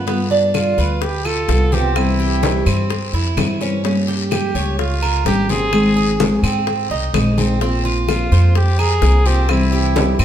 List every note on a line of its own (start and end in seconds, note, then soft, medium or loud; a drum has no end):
0.00 0.72 G2 medium
0.07 0.53 G3 medium
0.07 0.30 B3 medium
0.07 0.54 B3 medium
0.07 0.54 F4 medium
0.07 high bongo medium
0.07 high conga soft
0.07 long guiro medium
0.31 0.77 D4 medium
0.31 high bongo soft
0.31 high conga soft
0.54 1.00 G3 soft
0.54 1.00 B3 soft
0.54 1.03 F4 medium
0.54 1.01 F4 medium
0.54 high bongo medium
0.54 high conga medium
0.54 short guiro medium
0.54 claves medium
0.78 1.45 D2 medium
0.78 1.24 B4 medium
0.78 high bongo soft
0.78 high conga soft
0.78 short guiro medium
1.01 1.27 G4 medium
1.01 muted nylon-string guitar stroke medium
1.01 high bongo medium
1.01 high conga soft
1.01 long guiro medium
1.25 1.71 F4 medium
1.25 1.74 A4 loud
1.25 high bongo soft
1.25 high conga soft
1.25 claves medium
1.48 2.60 C2 medium
1.48 1.71 G3 soft
1.48 1.72 B3 soft
1.48 1.71 F4 soft
1.48 high bongo medium
1.48 low bongo medium
1.48 high conga soft
1.48 short guiro medium
1.72 1.96 B3 medium
1.72 2.18 C4 medium
1.72 1.95 F4 medium
1.72 1.98 G4 medium
1.72 high conga medium
1.72 short guiro medium
1.95 2.42 C3 medium
1.95 2.42 E3 medium
1.95 2.42 G3 medium
1.95 2.43 C4 medium
1.95 2.91 E4 medium
1.95 2.43 E4 medium
1.95 high bongo medium
1.95 high conga soft
1.95 long guiro medium
1.95 claves medium
2.19 2.65 G4 medium
2.19 high conga soft
2.43 2.89 E3 soft
2.43 2.89 G3 soft
2.43 2.89 C4 medium
2.43 2.89 E4 medium
2.43 high bongo medium
2.43 high conga medium
2.43 short guiro medium
2.66 3.10 G2 medium
2.66 3.12 C4 medium
2.66 high bongo soft
2.66 high conga soft
2.66 short guiro medium
2.66 claves medium
2.90 muted nylon-string guitar stroke medium
2.90 high bongo medium
2.90 high conga soft
2.90 long guiro medium
3.13 3.35 F2 medium
3.13 3.60 E4 medium
3.13 high bongo soft
3.13 high conga soft
3.37 4.48 G2 medium
3.37 3.60 E3 soft
3.37 3.60 G3 soft
3.37 3.60 C4 soft
3.37 3.59 E4 medium
3.37 high bongo medium
3.37 low bongo medium
3.37 high conga medium
3.37 short guiro medium
3.37 claves medium
3.60 3.83 E3 soft
3.60 3.82 G3 medium
3.60 3.84 C4 medium
3.60 3.83 C#4 medium
3.60 3.83 E4 medium
3.60 high bongo soft
3.60 short guiro medium
3.84 4.30 G3 medium
3.84 4.31 A#3 medium
3.84 4.07 C#4 medium
3.84 4.31 C#4 medium
3.84 4.31 G4 medium
3.84 high bongo medium
3.84 high conga soft
3.84 long guiro medium
4.08 4.54 G4 medium
4.08 high bongo soft
4.08 high conga soft
4.31 4.78 G3 soft
4.31 4.78 A#3 soft
4.31 4.78 C#4 medium
4.31 4.76 G4 medium
4.31 4.78 G4 medium
4.31 high bongo medium
4.31 high conga medium
4.31 short guiro medium
4.31 claves medium
4.55 5.21 C#2 medium
4.55 5.01 C#5 medium
4.55 high bongo soft
4.55 high conga soft
4.55 short guiro medium
4.79 5.23 F4 medium
4.79 muted nylon-string guitar stroke medium
4.79 high bongo medium
4.79 high conga soft
4.79 long guiro medium
5.02 5.48 A#4 medium
5.02 high bongo soft
5.02 high conga soft
5.02 claves medium
5.25 6.37 G#1 medium
5.25 5.48 G3 soft
5.25 5.49 A#3 soft
5.25 5.49 C#4 medium
5.25 5.52 G4 medium
5.25 5.48 G4 medium
5.25 high bongo medium
5.25 low bongo medium
5.25 high conga soft
5.25 short guiro medium
5.49 5.73 A#3 medium
5.49 5.95 C4 medium
5.49 5.72 C#4 medium
5.49 5.72 G4 medium
5.49 6.44 G#4 loud
5.49 high conga medium
5.49 short guiro medium
5.72 6.19 D#3 medium
5.72 6.18 G#3 medium
5.72 6.19 C4 medium
5.72 6.19 D#4 medium
5.72 6.20 G#4 medium
5.72 high bongo medium
5.72 high conga soft
5.72 long guiro medium
5.72 claves medium
5.96 6.42 G#4 medium
5.96 high conga soft
6.19 6.66 G#3 medium
6.19 6.66 C4 soft
6.19 6.66 D#4 soft
6.19 6.67 G#4 medium
6.19 high bongo medium
6.19 high conga medium
6.19 short guiro medium
6.43 6.87 G#2 medium
6.43 6.89 C4 medium
6.43 high bongo soft
6.43 high conga soft
6.43 short guiro medium
6.43 claves medium
6.67 muted nylon-string guitar stroke medium
6.67 high bongo medium
6.67 high conga soft
6.67 long guiro medium
6.90 7.12 C2 medium
6.90 7.36 D#4 medium
6.90 high bongo soft
6.90 high conga soft
7.14 8.25 A#1 medium
7.14 7.37 G#3 soft
7.14 7.37 C4 medium
7.14 7.37 D#4 soft
7.14 7.37 G#4 medium
7.14 high bongo medium
7.14 low bongo medium
7.14 high conga medium
7.14 short guiro medium
7.14 claves medium
7.38 7.61 G#3 medium
7.38 7.61 C4 medium
7.38 7.61 D#4 medium
7.38 7.60 G#4 medium
7.38 high bongo soft
7.38 high conga medium
7.38 short guiro medium
7.61 8.07 F3 medium
7.61 8.07 A#3 medium
7.61 7.84 C4 medium
7.61 8.08 C4 medium
7.61 8.08 F4 medium
7.61 high bongo medium
7.61 high conga soft
7.61 long guiro medium
7.85 8.30 F4 medium
7.85 high bongo soft
7.85 high conga soft
8.08 8.54 F3 soft
8.08 8.54 A#3 medium
8.08 8.55 C4 medium
8.08 8.52 F4 medium
8.08 8.55 F4 medium
8.08 high bongo medium
8.08 high conga medium
8.08 short guiro medium
8.08 claves medium
8.31 8.98 F2 medium
8.31 8.77 C5 medium
8.31 high bongo soft
8.31 high conga soft
8.31 short guiro medium
8.55 8.81 G4 medium
8.55 muted nylon-string guitar stroke medium
8.55 high bongo medium
8.55 high conga soft
8.55 long guiro medium
8.79 9.28 G#4 loud
8.79 9.24 A#4 medium
8.79 high bongo soft
8.79 high conga soft
8.79 claves medium
9.02 10.13 C2 medium
9.02 9.25 F3 soft
9.02 9.25 A#3 medium
9.02 9.25 C4 medium
9.02 9.24 F4 medium
9.02 high bongo medium
9.02 low bongo medium
9.02 high conga soft
9.02 short guiro medium
9.26 9.49 A#3 soft
9.26 9.71 C4 medium
9.26 9.49 C4 medium
9.26 9.48 F4 medium
9.26 9.51 G4 medium
9.26 short guiro medium
9.48 9.95 C3 medium
9.48 9.95 E3 medium
9.48 9.95 G3 medium
9.48 9.95 C4 medium
9.48 10.25 E4 medium
9.48 9.96 E4 medium
9.48 high bongo medium
9.48 high conga soft
9.48 long guiro medium
9.48 claves medium
9.73 10.18 G4 medium
9.73 high conga soft
9.96 10.25 E3 soft
9.96 10.25 G3 soft
9.96 10.25 C4 medium
9.96 10.25 E4 medium
9.96 high bongo medium
9.96 high conga medium
9.96 short guiro medium
10.19 10.25 G2 medium
10.19 10.25 C4 medium
10.19 high bongo soft
10.19 high conga soft
10.19 short guiro medium
10.19 claves medium